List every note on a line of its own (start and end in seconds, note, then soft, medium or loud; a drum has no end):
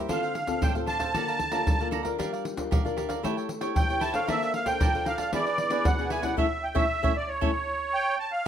0.09 0.59 D3 medium
0.09 0.34 C4 soft
0.09 0.21 D4 medium
0.09 0.34 F4 medium
0.09 0.21 A4 medium
0.09 0.34 A4 medium
0.09 0.22 C5 medium
0.09 0.63 F5 medium
0.09 0.22 F5 medium
0.09 pandeiro medium
0.09 surdo medium
0.23 0.34 A4 soft
0.23 0.34 C5 soft
0.23 0.35 F5 soft
0.23 pandeiro soft
0.35 muted cavaquinho stroke soft
0.35 pandeiro medium
0.47 0.70 C4 medium
0.47 0.70 F4 medium
0.47 0.70 A4 medium
0.47 pandeiro medium
0.47 surdo soft
0.62 1.11 A2 medium
0.62 0.74 D4 medium
0.62 0.74 A4 medium
0.62 0.74 C5 medium
0.62 0.74 F5 medium
0.62 0.74 G5 medium
0.62 pandeiro medium
0.62 surdo medium
0.75 1.10 C4 medium
0.75 1.11 F4 medium
0.75 1.11 A4 medium
0.75 0.86 A4 soft
0.75 0.86 C5 soft
0.75 0.87 F5 soft
0.75 pandeiro soft
0.75 surdo soft
0.86 0.99 D4 soft
0.86 0.99 A4 soft
0.86 0.99 C5 medium
0.86 0.98 F5 medium
0.86 1.88 A5 loud
0.86 pandeiro soft
0.99 1.13 A4 medium
0.99 1.12 C5 medium
0.99 1.12 F5 medium
0.99 pandeiro medium
0.99 surdo soft
1.14 1.64 D3 medium
1.14 1.39 A#3 soft
1.14 1.39 F4 medium
1.14 1.26 A4 medium
1.14 1.39 A4 medium
1.14 1.26 D5 medium
1.14 1.27 F5 medium
1.14 1.27 A#5 medium
1.14 pandeiro medium
1.14 surdo medium
1.28 1.39 D5 soft
1.28 1.39 F5 soft
1.28 1.39 A#5 soft
1.28 pandeiro soft
1.39 muted cavaquinho stroke soft
1.39 pandeiro medium
1.39 surdo soft
1.51 1.74 A#3 medium
1.51 1.75 F4 medium
1.51 1.75 A4 medium
1.51 1.79 D5 soft
1.51 1.78 F5 medium
1.51 1.77 A#5 medium
1.51 pandeiro medium
1.67 2.16 D3 medium
1.67 pandeiro medium
1.67 surdo loud
1.79 2.02 A#3 medium
1.79 2.02 F4 medium
1.79 2.02 A4 medium
1.79 1.91 D5 soft
1.79 1.91 F5 soft
1.79 1.91 A#5 soft
1.79 pandeiro soft
1.91 2.04 A4 medium
1.91 2.04 D5 medium
1.91 2.03 F5 medium
1.91 2.02 A#5 medium
1.91 pandeiro medium
2.03 2.53 D4 medium
2.03 2.53 F4 medium
2.03 2.53 A#4 medium
2.03 2.17 D5 soft
2.03 2.17 F5 soft
2.03 2.16 A#5 soft
2.03 pandeiro medium
2.03 surdo soft
2.19 2.69 G3 medium
2.19 2.31 G4 medium
2.19 2.31 A#4 medium
2.19 2.31 D5 medium
2.19 2.32 F5 medium
2.19 pandeiro medium
2.19 surdo medium
2.33 2.44 A#4 soft
2.33 2.45 D5 soft
2.33 2.44 F5 soft
2.33 pandeiro soft
2.45 muted cavaquinho stroke soft
2.45 pandeiro medium
2.56 2.79 D4 medium
2.56 2.79 F4 medium
2.56 2.79 A#4 medium
2.56 pandeiro medium
2.56 surdo soft
2.71 3.21 D3 medium
2.71 2.83 G4 medium
2.71 2.83 A#4 medium
2.71 2.83 D5 medium
2.71 2.83 F5 medium
2.71 pandeiro medium
2.71 surdo loud
2.85 3.19 D4 medium
2.85 3.20 F4 medium
2.85 3.20 A#4 medium
2.85 2.96 A#4 soft
2.85 2.97 D5 soft
2.85 2.96 F5 soft
2.85 pandeiro soft
2.85 surdo soft
2.97 3.09 G4 medium
2.97 3.09 A#4 soft
2.97 3.08 D5 medium
2.97 3.07 F5 medium
2.97 pandeiro medium
3.09 3.22 A#4 soft
3.09 3.22 D5 medium
3.09 3.21 F5 medium
3.09 pandeiro medium
3.09 surdo soft
3.23 3.73 A3 medium
3.23 3.47 E4 medium
3.23 3.35 E4 medium
3.23 3.48 G4 medium
3.23 3.36 A4 medium
3.23 3.48 C#5 medium
3.23 3.36 C#5 medium
3.23 3.36 G5 medium
3.23 pandeiro medium
3.23 surdo medium
3.37 3.49 A4 soft
3.37 3.49 C#5 soft
3.37 3.49 G5 soft
3.37 pandeiro soft
3.49 muted cavaquinho stroke soft
3.49 pandeiro medium
3.61 3.83 E4 medium
3.61 3.84 G4 medium
3.61 3.88 A4 medium
3.61 3.84 C#5 medium
3.61 3.87 C#5 medium
3.61 3.87 G5 medium
3.61 pandeiro medium
3.75 4.25 E3 medium
3.75 4.03 G5 medium
3.75 pandeiro medium
3.75 surdo medium
3.89 4.11 E4 medium
3.89 4.11 G4 medium
3.89 4.00 A4 soft
3.89 4.00 C#5 soft
3.89 4.11 C#5 medium
3.89 4.01 G5 soft
3.89 pandeiro soft
4.01 4.13 E4 medium
4.01 4.13 A4 medium
4.01 4.14 C#5 medium
4.01 4.12 G5 medium
4.01 4.15 A5 medium
4.01 pandeiro medium
4.13 4.62 D4 medium
4.13 4.62 A4 medium
4.13 4.27 A4 soft
4.13 4.63 C5 medium
4.13 4.27 C#5 soft
4.13 4.28 F5 medium
4.13 4.26 G5 soft
4.13 pandeiro medium
4.13 surdo soft
4.28 4.78 A#3 medium
4.28 4.40 A#4 medium
4.28 4.40 D5 medium
4.28 4.53 E5 medium
4.28 4.40 F5 medium
4.28 4.41 A5 medium
4.28 pandeiro medium
4.28 surdo medium
4.42 4.53 D5 soft
4.42 4.53 F5 soft
4.42 4.53 A5 soft
4.42 pandeiro soft
4.54 4.67 F5 medium
4.54 muted cavaquinho stroke soft
4.54 pandeiro medium
4.66 4.88 D4 medium
4.66 4.88 A4 medium
4.66 4.89 C5 medium
4.66 5.07 G5 medium
4.66 pandeiro medium
4.66 surdo soft
4.80 5.30 F3 medium
4.80 4.92 A#4 medium
4.80 4.92 D5 medium
4.80 4.93 F5 medium
4.80 4.93 A5 medium
4.80 pandeiro medium
4.80 surdo loud
4.94 5.29 D4 medium
4.94 5.29 A4 medium
4.94 5.29 C5 medium
4.94 5.05 D5 soft
4.94 5.05 F5 soft
4.94 pandeiro soft
4.94 surdo soft
5.05 5.18 A#4 soft
5.05 5.18 D5 medium
5.05 5.18 F5 medium
5.05 5.17 F5 medium
5.05 5.17 A5 medium
5.05 pandeiro medium
5.18 5.31 D5 medium
5.18 5.31 F5 medium
5.18 5.31 A5 medium
5.18 pandeiro medium
5.18 surdo soft
5.32 5.82 E3 medium
5.32 5.67 B3 soft
5.32 5.68 D4 medium
5.32 5.45 E4 medium
5.32 5.68 G#4 medium
5.32 5.45 G#4 medium
5.32 5.45 B4 medium
5.32 5.87 D5 medium
5.32 5.45 D5 medium
5.32 pandeiro medium
5.32 surdo medium
5.46 5.58 G#4 soft
5.46 5.58 B4 soft
5.46 5.58 D5 soft
5.46 pandeiro soft
5.58 muted cavaquinho stroke soft
5.58 pandeiro medium
5.70 5.93 B3 medium
5.70 5.93 D4 medium
5.70 5.93 G#4 medium
5.70 5.97 G#4 medium
5.70 5.97 B4 medium
5.70 5.96 D5 medium
5.70 pandeiro medium
5.84 6.34 B2 medium
5.84 6.10 F#5 medium
5.84 pandeiro medium
5.84 surdo medium
5.98 6.20 B3 medium
5.98 6.20 D4 soft
5.98 6.20 G#4 medium
5.98 6.10 G#4 soft
5.98 6.10 B4 soft
5.98 6.10 D5 soft
5.98 pandeiro soft
6.10 6.23 E4 medium
6.10 6.23 G#4 medium
6.10 6.22 B4 medium
6.10 6.21 D5 medium
6.10 6.25 G#5 medium
6.10 pandeiro medium
6.22 6.36 G3 medium
6.22 6.36 C#4 medium
6.22 6.36 E4 medium
6.22 6.36 G#4 soft
6.22 6.36 B4 soft
6.22 6.35 D5 soft
6.22 6.37 F#5 medium
6.22 pandeiro medium
6.22 surdo soft
6.37 6.45 A3 medium
6.37 6.46 C#4 medium
6.37 6.45 E4 medium
6.37 6.46 A4 medium
6.37 6.46 C#5 medium
6.37 6.64 E5 medium
6.37 6.46 E5 medium
6.37 surdo medium
6.64 6.76 G5 medium
6.75 6.84 A3 medium
6.75 6.84 C#4 medium
6.75 6.84 E4 medium
6.75 6.84 A4 medium
6.75 6.84 C#5 medium
6.75 6.84 E5 medium
6.75 7.16 E5 medium
6.75 surdo loud
7.03 7.11 A3 medium
7.03 7.11 C#4 medium
7.03 7.11 E4 medium
7.03 7.12 A4 medium
7.03 7.12 C#5 medium
7.03 7.12 E5 medium
7.03 surdo medium
7.16 7.29 D5 medium
7.28 8.16 C#5 medium
7.41 7.50 A3 medium
7.41 7.50 C#4 medium
7.41 7.50 E4 medium
7.41 7.50 A4 medium
7.41 7.50 C#5 medium
7.41 7.50 E5 medium
7.41 surdo medium
7.94 8.18 G5 medium
8.19 8.32 A5 medium
8.32 8.46 F5 medium